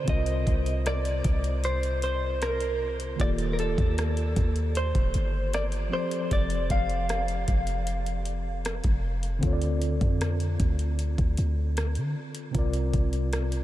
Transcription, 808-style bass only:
0, 0, Header, 1, 2, 480
1, 0, Start_track
1, 0, Tempo, 779221
1, 48, Time_signature, 4, 2, 24, 8
1, 8401, End_track
2, 0, Start_track
2, 0, Title_t, "808-style bass"
2, 0, Program_c, 0, 38
2, 49, Note_on_c, 0, 36, 102
2, 279, Note_off_c, 0, 36, 0
2, 290, Note_on_c, 0, 36, 103
2, 750, Note_off_c, 0, 36, 0
2, 768, Note_on_c, 0, 36, 97
2, 1944, Note_off_c, 0, 36, 0
2, 1970, Note_on_c, 0, 27, 107
2, 2315, Note_off_c, 0, 27, 0
2, 2330, Note_on_c, 0, 39, 103
2, 2674, Note_off_c, 0, 39, 0
2, 2689, Note_on_c, 0, 39, 94
2, 3034, Note_off_c, 0, 39, 0
2, 3050, Note_on_c, 0, 27, 97
2, 3164, Note_off_c, 0, 27, 0
2, 3173, Note_on_c, 0, 31, 99
2, 3631, Note_off_c, 0, 31, 0
2, 3890, Note_on_c, 0, 29, 110
2, 4119, Note_off_c, 0, 29, 0
2, 4129, Note_on_c, 0, 29, 105
2, 4589, Note_off_c, 0, 29, 0
2, 4609, Note_on_c, 0, 29, 95
2, 5424, Note_off_c, 0, 29, 0
2, 5449, Note_on_c, 0, 29, 102
2, 5794, Note_off_c, 0, 29, 0
2, 5809, Note_on_c, 0, 38, 102
2, 6154, Note_off_c, 0, 38, 0
2, 6168, Note_on_c, 0, 41, 101
2, 6514, Note_off_c, 0, 41, 0
2, 6528, Note_on_c, 0, 38, 98
2, 6874, Note_off_c, 0, 38, 0
2, 6890, Note_on_c, 0, 38, 101
2, 7004, Note_off_c, 0, 38, 0
2, 7013, Note_on_c, 0, 38, 99
2, 7372, Note_on_c, 0, 50, 99
2, 7382, Note_off_c, 0, 38, 0
2, 7484, Note_off_c, 0, 50, 0
2, 7730, Note_on_c, 0, 36, 110
2, 7959, Note_off_c, 0, 36, 0
2, 7970, Note_on_c, 0, 36, 100
2, 8401, Note_off_c, 0, 36, 0
2, 8401, End_track
0, 0, End_of_file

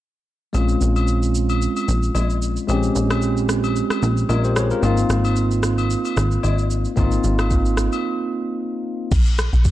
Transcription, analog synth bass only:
0, 0, Header, 1, 2, 480
1, 0, Start_track
1, 0, Tempo, 535714
1, 487, Time_signature, 4, 2, 24, 8
1, 8700, End_track
2, 0, Start_track
2, 0, Title_t, "Analog synth bass"
2, 0, Program_c, 0, 38
2, 487, Note_on_c, 0, 34, 92
2, 680, Note_off_c, 0, 34, 0
2, 728, Note_on_c, 0, 34, 90
2, 1501, Note_off_c, 0, 34, 0
2, 1688, Note_on_c, 0, 34, 96
2, 1881, Note_off_c, 0, 34, 0
2, 1927, Note_on_c, 0, 34, 92
2, 2314, Note_off_c, 0, 34, 0
2, 2407, Note_on_c, 0, 34, 100
2, 2601, Note_off_c, 0, 34, 0
2, 2648, Note_on_c, 0, 34, 93
2, 3421, Note_off_c, 0, 34, 0
2, 3607, Note_on_c, 0, 34, 95
2, 3800, Note_off_c, 0, 34, 0
2, 3847, Note_on_c, 0, 34, 87
2, 4234, Note_off_c, 0, 34, 0
2, 4326, Note_on_c, 0, 32, 99
2, 4520, Note_off_c, 0, 32, 0
2, 4566, Note_on_c, 0, 32, 93
2, 5341, Note_off_c, 0, 32, 0
2, 5526, Note_on_c, 0, 32, 102
2, 5720, Note_off_c, 0, 32, 0
2, 5768, Note_on_c, 0, 32, 85
2, 6154, Note_off_c, 0, 32, 0
2, 6247, Note_on_c, 0, 32, 94
2, 6440, Note_off_c, 0, 32, 0
2, 6489, Note_on_c, 0, 32, 92
2, 7069, Note_off_c, 0, 32, 0
2, 8700, End_track
0, 0, End_of_file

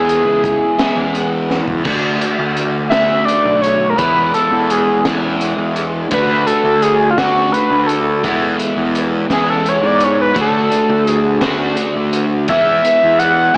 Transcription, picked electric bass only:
0, 0, Header, 1, 2, 480
1, 0, Start_track
1, 0, Tempo, 708383
1, 1260, Time_signature, 6, 3, 24, 8
1, 9198, End_track
2, 0, Start_track
2, 0, Title_t, "Picked electric bass"
2, 0, Program_c, 0, 34
2, 0, Note_on_c, 0, 40, 86
2, 172, Note_off_c, 0, 40, 0
2, 172, Note_on_c, 0, 37, 79
2, 389, Note_off_c, 0, 37, 0
2, 655, Note_on_c, 0, 40, 81
2, 1084, Note_off_c, 0, 40, 0
2, 1137, Note_on_c, 0, 40, 62
2, 1245, Note_off_c, 0, 40, 0
2, 1255, Note_on_c, 0, 38, 87
2, 1471, Note_off_c, 0, 38, 0
2, 1619, Note_on_c, 0, 38, 84
2, 1940, Note_off_c, 0, 38, 0
2, 1978, Note_on_c, 0, 38, 98
2, 2193, Note_off_c, 0, 38, 0
2, 2336, Note_on_c, 0, 35, 84
2, 2700, Note_off_c, 0, 35, 0
2, 2700, Note_on_c, 0, 40, 108
2, 2914, Note_off_c, 0, 40, 0
2, 3056, Note_on_c, 0, 40, 82
2, 3379, Note_off_c, 0, 40, 0
2, 3424, Note_on_c, 0, 40, 90
2, 3744, Note_off_c, 0, 40, 0
2, 3784, Note_on_c, 0, 40, 79
2, 4104, Note_off_c, 0, 40, 0
2, 4141, Note_on_c, 0, 38, 89
2, 4355, Note_off_c, 0, 38, 0
2, 4497, Note_on_c, 0, 38, 75
2, 4820, Note_off_c, 0, 38, 0
2, 4864, Note_on_c, 0, 38, 96
2, 5077, Note_off_c, 0, 38, 0
2, 5221, Note_on_c, 0, 38, 84
2, 5584, Note_off_c, 0, 38, 0
2, 5584, Note_on_c, 0, 40, 102
2, 5797, Note_off_c, 0, 40, 0
2, 5943, Note_on_c, 0, 40, 79
2, 6263, Note_off_c, 0, 40, 0
2, 6301, Note_on_c, 0, 40, 96
2, 6622, Note_off_c, 0, 40, 0
2, 6659, Note_on_c, 0, 44, 78
2, 6981, Note_off_c, 0, 44, 0
2, 7021, Note_on_c, 0, 38, 91
2, 7236, Note_off_c, 0, 38, 0
2, 7379, Note_on_c, 0, 38, 84
2, 7701, Note_off_c, 0, 38, 0
2, 7737, Note_on_c, 0, 38, 109
2, 7953, Note_off_c, 0, 38, 0
2, 8106, Note_on_c, 0, 38, 80
2, 8461, Note_off_c, 0, 38, 0
2, 8461, Note_on_c, 0, 40, 110
2, 8675, Note_off_c, 0, 40, 0
2, 8830, Note_on_c, 0, 40, 78
2, 9147, Note_off_c, 0, 40, 0
2, 9198, End_track
0, 0, End_of_file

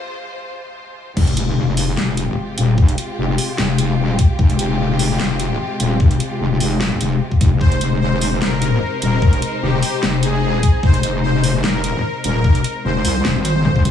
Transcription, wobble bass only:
0, 0, Header, 1, 2, 480
1, 0, Start_track
1, 0, Key_signature, -4, "minor"
1, 0, Tempo, 402685
1, 1392, Time_signature, 4, 2, 24, 8
1, 16577, End_track
2, 0, Start_track
2, 0, Title_t, "Wobble bass"
2, 0, Program_c, 0, 39
2, 1392, Note_on_c, 0, 29, 96
2, 1614, Note_off_c, 0, 29, 0
2, 1631, Note_on_c, 0, 29, 101
2, 2334, Note_off_c, 0, 29, 0
2, 2352, Note_on_c, 0, 29, 96
2, 2814, Note_off_c, 0, 29, 0
2, 3072, Note_on_c, 0, 27, 96
2, 3294, Note_off_c, 0, 27, 0
2, 3312, Note_on_c, 0, 29, 96
2, 3534, Note_off_c, 0, 29, 0
2, 3792, Note_on_c, 0, 29, 97
2, 4014, Note_off_c, 0, 29, 0
2, 4272, Note_on_c, 0, 29, 99
2, 4773, Note_off_c, 0, 29, 0
2, 4773, Note_on_c, 0, 28, 99
2, 4974, Note_off_c, 0, 28, 0
2, 5232, Note_on_c, 0, 29, 99
2, 5454, Note_off_c, 0, 29, 0
2, 5472, Note_on_c, 0, 29, 102
2, 6174, Note_off_c, 0, 29, 0
2, 6192, Note_on_c, 0, 29, 99
2, 6654, Note_off_c, 0, 29, 0
2, 6912, Note_on_c, 0, 27, 98
2, 7134, Note_off_c, 0, 27, 0
2, 7152, Note_on_c, 0, 29, 95
2, 7374, Note_off_c, 0, 29, 0
2, 7632, Note_on_c, 0, 29, 100
2, 7854, Note_off_c, 0, 29, 0
2, 7872, Note_on_c, 0, 29, 96
2, 8334, Note_off_c, 0, 29, 0
2, 8352, Note_on_c, 0, 29, 101
2, 8574, Note_off_c, 0, 29, 0
2, 8832, Note_on_c, 0, 29, 99
2, 9054, Note_off_c, 0, 29, 0
2, 9072, Note_on_c, 0, 29, 93
2, 9294, Note_off_c, 0, 29, 0
2, 9312, Note_on_c, 0, 29, 100
2, 10014, Note_off_c, 0, 29, 0
2, 10031, Note_on_c, 0, 29, 98
2, 10494, Note_off_c, 0, 29, 0
2, 10752, Note_on_c, 0, 27, 99
2, 10974, Note_off_c, 0, 27, 0
2, 10992, Note_on_c, 0, 29, 96
2, 11214, Note_off_c, 0, 29, 0
2, 11471, Note_on_c, 0, 29, 100
2, 11694, Note_off_c, 0, 29, 0
2, 11952, Note_on_c, 0, 29, 99
2, 12452, Note_off_c, 0, 29, 0
2, 12452, Note_on_c, 0, 28, 99
2, 12654, Note_off_c, 0, 28, 0
2, 12912, Note_on_c, 0, 29, 98
2, 13134, Note_off_c, 0, 29, 0
2, 13152, Note_on_c, 0, 29, 100
2, 13854, Note_off_c, 0, 29, 0
2, 13872, Note_on_c, 0, 29, 97
2, 14334, Note_off_c, 0, 29, 0
2, 14592, Note_on_c, 0, 27, 100
2, 14814, Note_off_c, 0, 27, 0
2, 14831, Note_on_c, 0, 29, 97
2, 15054, Note_off_c, 0, 29, 0
2, 15312, Note_on_c, 0, 29, 96
2, 15534, Note_off_c, 0, 29, 0
2, 15552, Note_on_c, 0, 36, 103
2, 15774, Note_off_c, 0, 36, 0
2, 15792, Note_on_c, 0, 29, 98
2, 15899, Note_off_c, 0, 29, 0
2, 15919, Note_on_c, 0, 32, 99
2, 16379, Note_off_c, 0, 32, 0
2, 16399, Note_on_c, 0, 29, 98
2, 16577, Note_off_c, 0, 29, 0
2, 16577, End_track
0, 0, End_of_file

